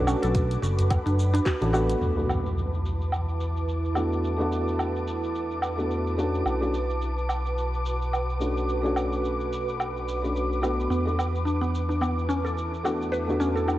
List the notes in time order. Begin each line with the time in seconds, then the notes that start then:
Already playing: B1 A3 C#4 D4 F#4 B4 B5 D6
0.07 C#4, low woodblock, shaker
0.23 B1 A4, closed hi-hat, shaker
0.35 kick, closed hi-hat, shaker
0.51 closed hi-hat, shaker
0.62 F#1 F#4, shaker
0.79 closed hi-hat, udu, shaker
0.90 kick, closed hi-hat, low woodblock, shaker
1.06 F#1 D4, closed hi-hat, shaker
1.19 shaker
1.34 D4, closed hi-hat, shaker
1.45 F#4, kick, clap, closed hi-hat, shaker
1.60 A1 A3 C#4 D4 F#4, closed hi-hat, shaker
1.72 A3 B3 D4 F#4, low woodblock, shaker
1.90 closed hi-hat, shaker
2.01 E2 E4 B4 A5 D6, impact, shaker
2.16 A3 B3 D4 F#4, shaker
2.29 low woodblock, shaker
2.46 shaker
2.58 shaker
2.74 shaker
2.86 shaker
3.02 shaker
3.12 low woodblock, shaker
3.29 shaker
3.41 shaker
3.57 shaker
3.69 shaker
3.85 shaker
3.94 A3 B3 D4 F#4, low woodblock, shaker
4.13 shaker
4.24 shaker
4.36 A3 B3 D4, shaker
4.40 F#4
4.52 shaker
4.68 shaker
4.79 low woodblock, shaker
4.96 shaker
5.08 shaker
5.24 shaker
5.35 shaker
5.51 shaker
5.62 low woodblock, shaker
5.77 A3 B3 D4 F#4, shaker
5.91 shaker
6.07 shaker
6.17 A3 C#4 D4 F#4, shaker
6.35 shaker
6.45 B1 F#4, low woodblock, shaker
6.60 A3 C#4 D4 F#4, shaker
6.74 shaker
6.90 shaker
7.02 shaker
7.18 shaker
7.29 low woodblock, shaker
7.46 shaker
7.58 shaker
7.74 shaker
7.86 shaker
8.02 shaker
8.13 low woodblock, shaker
8.30 shaker
8.39 A3 C#4 D4 F#4, shaker
8.57 shaker
8.68 B5, shaker
8.82 A3 C#4 D4 F#4, shaker
8.96 low woodblock, shaker
9.13 shaker
9.25 shaker
9.40 shaker
9.53 shaker
9.68 shaker
9.80 low woodblock, shaker
9.96 shaker
10.08 shaker
10.22 A3 C#4 D4 F#4, shaker
10.36 shaker
10.52 shaker
10.61 A3 B3 D4 F#4, low woodblock, shaker
10.80 shaker
10.90 E2 B3 E4 A5, shaker
11.05 A3 B3 D4 F#4, shaker
11.19 low woodblock, shaker
11.35 shaker
11.45 D4, shaker
11.62 B3, shaker
11.75 shaker
11.89 D4, shaker
12.01 B3, low woodblock, shaker
12.19 shaker
12.29 C#4, shaker
12.45 A4, shaker
12.58 shaker
12.74 shaker
12.83 A3 B3 D4 F#4, low woodblock, shaker
13.02 shaker
13.12 B4, shaker
13.26 A3 B3 D4, shaker
13.30 F#4
13.40 C#4, shaker
13.56 A4, shaker
13.68 D4, low woodblock, shaker